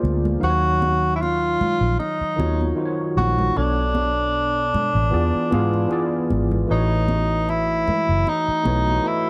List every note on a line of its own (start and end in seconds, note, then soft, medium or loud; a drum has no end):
0.00 0.36 D2 medium
0.00 0.44 A#3 medium
0.00 0.44 F4 medium
0.00 0.44 G#4 medium
0.00 0.43 C5 medium
0.00 0.21 D5 medium
0.00 0.41 F5 medium
0.05 muted conga soft
0.05 high conga soft
0.05 low conga medium
0.25 low conga medium
0.39 1.56 D#2 medium
0.39 1.52 D#3 medium
0.39 1.53 F#3 medium
0.39 1.53 D#4 medium
0.39 1.53 F5 medium
0.43 1.11 F#4 medium
0.43 0.50 C5 medium
0.43 muted conga soft
0.50 1.57 C#5 medium
0.82 muted conga soft
0.82 high conga medium
1.15 1.23 E4 medium
1.21 1.98 F4 medium
1.21 muted conga soft
1.61 muted fingered electric bass stroke soft
1.61 low conga medium
1.81 1.96 A#1 medium
1.99 2.73 D#4 medium
1.99 muted conga soft
2.21 muted fingered electric bass stroke soft
2.36 2.71 D#2 medium
2.36 2.66 D#3 medium
2.36 2.66 D#4 medium
2.36 2.67 F4 medium
2.36 2.67 F#4 medium
2.36 2.68 C#5 medium
2.36 high conga medium
2.61 high conga soft
2.75 3.33 D#3 medium
2.75 3.33 D#4 medium
2.75 3.34 F4 medium
2.75 3.34 F#4 medium
2.79 2.85 C5 medium
2.85 3.38 C#5 medium
3.17 3.50 A#1 medium
3.17 3.58 F#4 medium
3.17 muted conga soft
3.17 high conga medium
3.17 low conga medium
3.39 low conga medium
3.54 4.70 B1 medium
3.54 4.66 B2 medium
3.54 4.67 B3 medium
3.54 4.67 D4 medium
3.54 6.31 D4 medium
3.54 4.68 A4 medium
3.54 4.68 C#5 medium
3.54 muted conga soft
3.95 high conga medium
4.74 muted fingered electric bass stroke soft
4.74 muted conga soft
4.74 low conga medium
4.95 5.10 A1 medium
5.10 5.31 E2 medium
5.10 5.43 E3 medium
5.10 5.44 B3 medium
5.10 5.44 F4 medium
5.10 5.45 G#4 medium
5.10 5.45 D5 medium
5.35 muted fingered electric bass stroke soft
5.50 5.86 G#2 medium
5.50 5.80 E3 medium
5.50 5.80 B3 medium
5.50 5.81 F4 medium
5.50 5.81 G#4 medium
5.50 5.81 F5 medium
5.50 muted conga soft
5.50 high conga medium
5.74 high conga soft
5.88 6.46 E3 medium
5.88 6.47 B3 medium
5.88 6.48 F4 medium
5.88 6.48 G#4 medium
5.88 muted conga soft
5.93 6.49 D5 medium
6.31 6.64 G#1 medium
6.31 muted conga soft
6.31 high conga soft
6.31 low conga medium
6.51 low conga medium
6.67 7.84 A1 medium
6.67 7.80 E3 medium
6.67 7.80 A3 medium
6.67 7.81 F#4 medium
6.67 7.81 B4 medium
6.67 7.82 C#5 medium
6.71 7.51 D#4 medium
7.08 muted conga soft
7.08 high conga medium
7.49 8.30 E4 medium
7.49 muted conga soft
7.88 muted fingered electric bass stroke soft
7.88 muted conga soft
7.88 low conga medium
8.09 8.24 F#1 medium
8.27 9.09 D#4 medium
8.27 muted conga soft
8.48 muted fingered electric bass stroke soft
8.63 8.98 B1 medium
8.63 8.93 A3 medium
8.63 8.93 E4 medium
8.63 8.94 F#4 medium
8.63 8.94 B4 medium
8.63 8.95 C#5 medium
8.63 muted conga soft
8.63 high conga medium
8.88 high conga soft
9.02 9.30 A3 medium
9.02 9.30 E4 medium
9.02 9.30 F#4 medium
9.02 9.30 B4 medium
9.02 9.30 D#5 medium
9.07 9.30 E4 medium